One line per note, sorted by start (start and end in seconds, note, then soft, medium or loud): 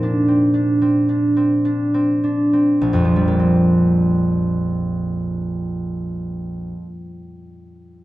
0.00 2.86 A#2 soft
0.00 0.27 C4 soft
0.00 0.53 D4 soft
0.00 3.41 A#4 soft
0.00 1.97 C5 medium
0.28 0.80 C4 soft
0.54 1.08 D4 soft
0.82 1.35 C4 soft
1.09 1.64 D4 soft
1.37 1.86 C4 soft
1.65 2.22 D4 soft
1.94 2.52 C4 soft
2.24 6.09 D4 soft
2.53 3.38 C4 soft
2.82 6.72 A#1 soft
2.93 6.83 F2 soft
3.05 6.87 F3 soft
3.16 6.94 G3 soft
3.28 7.06 A#3 soft
3.39 7.17 C4 soft